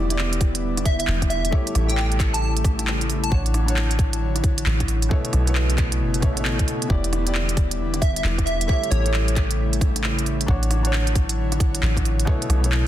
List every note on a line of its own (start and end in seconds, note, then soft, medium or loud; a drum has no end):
0.00 1.07 E1 loud
0.00 1.51 D3 medium
0.00 0.08 E3 medium
0.00 3.29 G3 medium
0.00 1.51 B3 medium
0.00 0.09 E4 medium
0.00 10.45 E4 medium
0.00 0.11 G4 medium
0.00 0.12 D5 loud
0.08 0.15 E3 medium
0.08 0.16 E4 medium
0.08 0.17 G4 medium
0.08 0.17 D5 medium
0.08 closed hi-hat medium
0.19 clap loud
0.33 closed hi-hat soft
0.41 kick loud
0.41 open hi-hat medium
0.55 closed hi-hat medium
0.77 cross-stick medium
0.77 closed hi-hat soft
0.85 0.95 E5 medium
0.85 kick loud
0.85 open hi-hat medium
0.99 1.05 E5 medium
0.99 closed hi-hat medium
1.07 1.52 E1 medium
1.07 clap loud
1.22 kick medium
1.22 cross-stick medium
1.22 closed hi-hat soft
1.30 1.54 E5 medium
1.30 open hi-hat medium
1.45 closed hi-hat medium
1.51 3.30 C#3 medium
1.51 1.85 A3 medium
1.51 3.30 A3 medium
1.51 1.86 E4 medium
1.51 1.86 G4 medium
1.51 1.87 C#5 loud
1.51 kick loud
1.67 closed hi-hat soft
1.75 3.31 A1 loud
1.75 cross-stick medium
1.75 open hi-hat medium
1.87 1.94 A3 medium
1.87 1.95 E4 medium
1.87 1.96 G4 medium
1.87 1.94 G5 medium
1.87 closed hi-hat medium
1.91 1.96 C#5 medium
1.97 2.06 G5 medium
1.97 clap loud
2.12 closed hi-hat soft
2.20 kick loud
2.20 clap medium
2.20 open hi-hat medium
2.34 2.39 A5 medium
2.34 closed hi-hat medium
2.42 2.51 A5 medium
2.57 closed hi-hat soft
2.64 kick loud
2.64 cross-stick medium
2.64 open hi-hat medium
2.79 cross-stick soft
2.79 closed hi-hat medium
2.87 clap loud
3.01 closed hi-hat soft
3.10 open hi-hat medium
3.23 3.37 A5 medium
3.23 closed hi-hat medium
3.30 4.65 A1 loud
3.30 5.09 D3 medium
3.30 5.09 F#3 medium
3.30 3.64 D4 medium
3.30 3.65 F#4 medium
3.30 5.09 C#5 medium
3.30 kick loud
3.34 3.66 C#5 loud
3.46 closed hi-hat soft
3.54 cross-stick medium
3.54 open hi-hat medium
3.66 3.73 D4 medium
3.66 3.74 F#4 medium
3.66 3.75 C#5 medium
3.66 closed hi-hat medium
3.76 clap loud
3.91 closed hi-hat soft
3.99 kick loud
3.99 open hi-hat medium
4.13 closed hi-hat medium
4.36 cross-stick soft
4.36 closed hi-hat soft
4.44 kick loud
4.44 open hi-hat medium
4.58 closed hi-hat medium
4.66 5.10 A1 medium
4.66 clap loud
4.80 kick medium
4.80 cross-stick medium
4.80 closed hi-hat soft
4.88 open hi-hat medium
5.02 closed hi-hat medium
5.09 5.43 B2 medium
5.09 6.89 C#3 medium
5.09 5.44 A3 medium
5.09 6.89 A3 medium
5.09 8.66 B3 medium
5.09 5.44 E4 medium
5.09 5.45 C#5 loud
5.09 kick loud
5.25 closed hi-hat soft
5.33 6.02 B1 loud
5.33 cross-stick medium
5.33 open hi-hat medium
5.45 5.53 B2 medium
5.45 5.53 A3 medium
5.45 5.54 E4 medium
5.45 closed hi-hat medium
5.50 5.55 C#5 medium
5.55 clap loud
5.70 closed hi-hat soft
5.78 kick loud
5.78 clap medium
5.78 open hi-hat medium
5.92 closed hi-hat medium
6.01 6.24 F#1 medium
6.14 closed hi-hat soft
6.20 6.67 A1 medium
6.20 6.31 B2 medium
6.20 6.33 A3 medium
6.20 6.34 E4 medium
6.20 kick loud
6.20 cross-stick medium
6.20 open hi-hat medium
6.25 6.34 C#5 loud
6.33 6.86 B2 medium
6.33 6.87 A3 medium
6.37 6.87 E4 medium
6.37 6.90 C#5 medium
6.37 cross-stick soft
6.37 closed hi-hat medium
6.45 clap loud
6.59 kick medium
6.59 closed hi-hat soft
6.68 open hi-hat medium
6.82 closed hi-hat medium
6.88 8.23 E1 loud
6.88 8.67 D3 medium
6.88 7.22 E3 medium
6.88 10.44 G3 medium
6.88 7.23 E4 medium
6.88 7.23 G4 medium
6.88 7.24 D5 loud
6.88 kick loud
7.04 closed hi-hat soft
7.13 cross-stick medium
7.13 open hi-hat medium
7.24 7.32 E3 medium
7.24 7.32 E4 medium
7.24 7.33 G4 medium
7.24 closed hi-hat medium
7.28 7.34 D5 medium
7.35 clap loud
7.49 closed hi-hat soft
7.57 kick loud
7.57 open hi-hat medium
7.71 closed hi-hat medium
7.94 cross-stick soft
7.94 closed hi-hat soft
8.01 8.11 E5 medium
8.01 kick loud
8.01 open hi-hat medium
8.16 8.22 E5 medium
8.16 closed hi-hat soft
8.24 8.68 E1 medium
8.24 clap loud
8.38 kick medium
8.38 cross-stick medium
8.38 closed hi-hat soft
8.46 8.67 E5 medium
8.46 open hi-hat medium
8.61 closed hi-hat medium
8.67 10.46 C#3 medium
8.67 9.01 A3 medium
8.67 10.47 A3 medium
8.67 9.02 E4 medium
8.67 9.02 G4 medium
8.67 9.03 C#5 loud
8.67 8.89 E5 medium
8.67 kick loud
8.84 closed hi-hat soft
8.91 10.47 A1 medium
8.91 9.36 C#5 medium
8.91 cross-stick medium
8.91 open hi-hat medium
9.03 9.11 A3 medium
9.03 9.11 E4 medium
9.03 9.12 G4 medium
9.03 9.13 C#5 medium
9.03 closed hi-hat medium
9.14 clap loud
9.28 closed hi-hat soft
9.36 kick loud
9.36 clap medium
9.36 open hi-hat medium
9.51 closed hi-hat medium
9.73 closed hi-hat soft
9.81 kick loud
9.81 cross-stick medium
9.81 open hi-hat medium
9.96 cross-stick soft
9.96 closed hi-hat medium
10.04 clap loud
10.19 closed hi-hat soft
10.26 open hi-hat medium
10.41 closed hi-hat medium
10.47 11.82 A1 loud
10.47 12.26 D3 medium
10.47 12.26 F#3 medium
10.47 10.81 D4 medium
10.47 12.26 E4 medium
10.47 10.82 F#4 medium
10.47 12.26 C#5 medium
10.47 10.82 C#5 loud
10.47 kick loud
10.63 closed hi-hat soft
10.71 cross-stick medium
10.71 open hi-hat medium
10.83 10.90 D4 medium
10.83 10.91 F#4 medium
10.83 10.92 C#5 medium
10.83 closed hi-hat medium
10.93 clap loud
11.07 closed hi-hat soft
11.15 kick loud
11.15 open hi-hat medium
11.29 closed hi-hat medium
11.52 cross-stick medium
11.52 closed hi-hat soft
11.60 kick loud
11.60 open hi-hat medium
11.75 closed hi-hat medium
11.83 12.26 A1 medium
11.83 clap loud
11.97 kick medium
11.97 cross-stick medium
11.97 closed hi-hat soft
12.05 open hi-hat medium
12.20 closed hi-hat medium
12.25 12.59 B2 loud
12.25 12.87 C#3 medium
12.25 12.60 A3 medium
12.25 12.87 A3 medium
12.25 12.87 B3 medium
12.25 12.61 E4 medium
12.25 12.87 E4 loud
12.25 kick loud
12.29 12.61 C#5 loud
12.42 closed hi-hat soft
12.49 12.87 B1 loud
12.49 cross-stick medium
12.49 open hi-hat medium
12.62 12.69 B2 medium
12.62 12.70 A3 medium
12.62 12.70 E4 medium
12.62 12.71 C#5 medium
12.62 closed hi-hat medium
12.72 clap loud